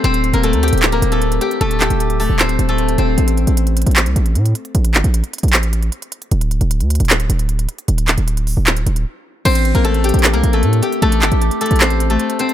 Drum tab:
CC |--------------------------------|--------------------------------|--------------------------------|--------------------------------|
HH |x-x-x-x-x-x-xxxxx-x-x-x-x-x-x-x-|x-x-x-x-x-x-o---x-x-x-x-x-x-x---|x-x-x-x-x-x-xxxxx-x-x-x-x-x-x-x-|x-x-x-x-x-x-xxxxx-x-x-x-x-x-x-x-|
CP |----------------x---------------|----x-----------x---------------|----------------x---------------|----x-----------x---------------|

CC |--------------------------------|--------------------------------|x-------------------------------|--------------------------------|
HH |x-x-x-x-x-x-xxxxx-x-x-x-x-x-x-x-|x-x-x-x-x-x-o---x-x-x-x---------|x-x-x-x-x-x-xxxxx-x-x-x-x-x-x-x-|x-x-x-x-x-x-xxxxx-x-x-x-x-x-x-x-|
CP |----------------x---------------|----x-----------x---------------|----------------x---------------|----x-----------x---------------|